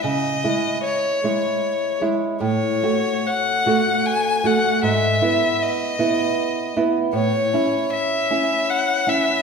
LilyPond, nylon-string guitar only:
\new Staff \with { instrumentName = "Nylon-string guitar" } { \time 3/4 \key e \major \tempo 4 = 77 cis8 <gis e'>4 <gis e'>4 <gis e'>8 | a,8 <a fis'>4 <a fis'>4 <a fis'>8 | gis,8 <b e'>4 <b e'>4 <b e'>8 | a,8 <cis' e'>4 <cis' e'>4 <cis' e'>8 | }